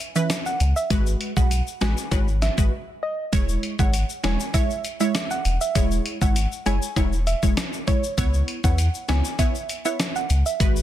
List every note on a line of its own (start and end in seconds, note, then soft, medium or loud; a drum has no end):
0.00 closed hi-hat medium
0.00 shaker medium
0.15 0.30 E3 medium
0.15 0.30 C#4 medium
0.15 0.30 B4 medium
0.15 0.28 E5 medium
0.15 shaker medium
0.30 cross-stick medium
0.30 snare loud
0.30 closed hi-hat medium
0.30 shaker medium
0.46 0.59 F#5 medium
0.46 shaker soft
0.60 0.73 C#2 medium
0.60 closed hi-hat medium
0.60 shaker medium
0.76 0.89 E5 medium
0.76 shaker medium
0.90 1.15 G#1 loud
0.90 1.33 G#3 loud
0.90 1.33 F#4 medium
0.90 1.33 B4 loud
0.90 kick loud
0.90 closed hi-hat medium
0.90 shaker medium
1.07 shaker medium
1.21 closed hi-hat medium
1.37 1.61 B1 medium
1.37 1.51 G#3 medium
1.37 1.51 F#4 medium
1.37 1.51 B4 medium
1.37 1.49 F#5 medium
1.37 kick medium
1.37 shaker medium
1.51 closed hi-hat medium
1.51 shaker medium
1.67 shaker medium
1.81 1.94 A1 loud
1.81 1.97 G#3 medium
1.81 1.97 F#4 medium
1.81 1.97 B4 medium
1.81 1.96 G#5 medium
1.81 cross-stick medium
1.81 snare loud
1.81 closed hi-hat medium
1.81 shaker soft
1.98 shaker medium
2.11 2.49 G#1 loud
2.11 2.27 G#3 medium
2.11 2.28 F#4 medium
2.11 2.28 B4 loud
2.11 kick medium
2.11 closed hi-hat medium
2.11 high timbale medium
2.11 shaker medium
2.28 shaker soft
2.42 2.56 E5 medium
2.42 snare medium
2.42 closed hi-hat medium
2.42 shaker medium
2.58 2.70 G#1 medium
2.58 2.72 G#3 medium
2.58 2.72 F#4 medium
2.58 2.72 B4 medium
2.58 kick medium
2.58 shaker medium
3.03 3.17 D#5 medium
3.32 3.58 E1 loud
3.32 3.75 G#3 medium
3.32 3.75 E4 medium
3.32 3.76 C#5 loud
3.32 kick loud
3.32 closed hi-hat medium
3.32 shaker medium
3.49 shaker medium
3.63 closed hi-hat medium
3.79 4.04 G#1 loud
3.79 3.93 G#3 medium
3.79 3.93 E4 medium
3.79 3.94 C#5 medium
3.79 3.92 F#5 medium
3.79 kick loud
3.79 shaker medium
3.94 closed hi-hat medium
3.94 shaker medium
4.10 shaker medium
4.23 4.37 E1 medium
4.23 4.39 G#3 medium
4.23 4.40 E4 medium
4.23 4.40 C#5 medium
4.23 4.38 G#5 medium
4.23 cross-stick medium
4.23 snare loud
4.23 closed hi-hat medium
4.23 shaker soft
4.40 shaker medium
4.54 4.70 G#3 loud
4.54 4.70 E4 medium
4.54 4.70 C#5 loud
4.54 4.68 E5 medium
4.54 kick medium
4.54 closed hi-hat medium
4.54 shaker medium
4.70 shaker soft
4.85 closed hi-hat medium
4.85 shaker medium
5.00 5.14 G#3 medium
5.00 5.15 E4 medium
5.00 5.15 C#5 medium
5.00 5.13 E5 medium
5.00 shaker medium
5.15 cross-stick loud
5.15 snare loud
5.15 closed hi-hat medium
5.15 shaker medium
5.31 5.43 F#5 medium
5.31 shaker medium
5.45 5.58 E1 medium
5.45 closed hi-hat medium
5.45 shaker soft
5.61 5.74 E5 medium
5.61 shaker medium
5.75 6.00 E1 loud
5.75 6.18 G#3 medium
5.75 6.18 E4 medium
5.75 6.18 C#5 loud
5.75 kick loud
5.75 closed hi-hat medium
5.75 shaker medium
5.91 shaker medium
6.06 closed hi-hat medium
6.21 6.46 G#1 medium
6.21 6.36 G#3 medium
6.21 6.36 E4 medium
6.21 6.36 C#5 medium
6.21 6.34 F#5 medium
6.21 kick loud
6.21 shaker medium
6.36 closed hi-hat medium
6.36 shaker medium
6.52 shaker medium
6.66 6.79 F#1 loud
6.66 6.82 G#3 medium
6.66 6.82 E4 medium
6.66 6.82 C#5 medium
6.66 6.80 G#5 medium
6.66 closed hi-hat medium
6.66 shaker soft
6.82 shaker medium
6.96 7.34 E1 loud
6.96 7.12 G#3 medium
6.96 7.12 E4 medium
6.96 7.13 C#5 loud
6.96 kick medium
6.96 closed hi-hat medium
6.96 high timbale medium
6.96 shaker medium
7.13 shaker soft
7.27 7.41 E5 medium
7.27 closed hi-hat medium
7.27 shaker medium
7.43 7.54 E1 medium
7.43 7.57 G#3 medium
7.43 7.57 E4 medium
7.43 7.57 C#5 medium
7.43 kick medium
7.43 shaker medium
7.57 cross-stick medium
7.57 snare loud
7.57 closed hi-hat medium
7.57 shaker medium
7.73 shaker soft
7.87 8.03 G#3 medium
7.87 8.03 E4 medium
7.87 8.02 C#5 medium
7.87 8.04 C#5 medium
7.87 kick loud
7.87 closed hi-hat medium
7.87 shaker soft
8.04 shaker medium
8.17 8.42 C#2 loud
8.17 8.60 B3 medium
8.17 8.60 E4 medium
8.17 8.60 C#5 loud
8.17 kick loud
8.17 closed hi-hat medium
8.17 shaker medium
8.34 shaker medium
8.48 closed hi-hat medium
8.64 8.89 E2 medium
8.64 8.78 B3 medium
8.64 8.78 E4 medium
8.64 8.78 C#5 medium
8.64 8.77 F#5 medium
8.64 kick loud
8.64 shaker medium
8.78 closed hi-hat medium
8.78 shaker medium
8.94 shaker medium
9.08 9.22 C#2 medium
9.08 9.24 B3 medium
9.08 9.25 E4 medium
9.08 9.25 C#5 medium
9.08 9.23 G#5 medium
9.08 cross-stick medium
9.08 snare loud
9.08 closed hi-hat medium
9.08 shaker soft
9.25 shaker medium
9.39 9.55 B3 loud
9.39 9.55 E4 medium
9.39 9.55 C#5 loud
9.39 9.53 E5 medium
9.39 kick medium
9.39 closed hi-hat medium
9.39 shaker medium
9.55 shaker soft
9.69 closed hi-hat medium
9.69 shaker medium
9.85 9.99 B3 medium
9.85 9.99 E4 medium
9.85 10.00 C#5 medium
9.85 9.98 E5 medium
9.85 shaker medium
10.00 cross-stick loud
10.00 snare loud
10.00 closed hi-hat medium
10.00 shaker medium
10.16 10.28 F#5 medium
10.16 shaker soft
10.30 10.43 C#2 medium
10.30 closed hi-hat medium
10.30 shaker medium
10.46 10.59 E5 medium
10.46 shaker medium
10.60 10.82 G#1 loud
10.60 10.82 G#3 medium
10.60 10.82 F#4 medium
10.60 10.82 B4 loud
10.60 kick loud
10.60 closed hi-hat medium
10.60 shaker medium
10.76 shaker medium